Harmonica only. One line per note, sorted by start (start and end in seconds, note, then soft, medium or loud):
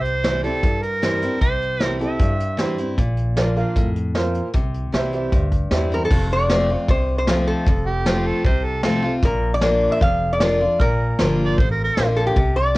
0.03 0.43 C5 loud
0.44 0.84 A4 medium
0.82 1.41 A#4 medium
1.42 1.85 C5 medium
1.85 1.96 A#4 medium
2.02 2.75 E5 medium
7.86 8.28 G4 loud
8.26 8.45 A4 medium
8.46 8.66 C5 medium
8.64 8.83 A4 medium
8.84 9.13 A4 medium
11.45 11.59 D5 loud
11.58 11.71 C5 medium
11.71 11.83 A#4 medium
11.84 12.06 A#4 loud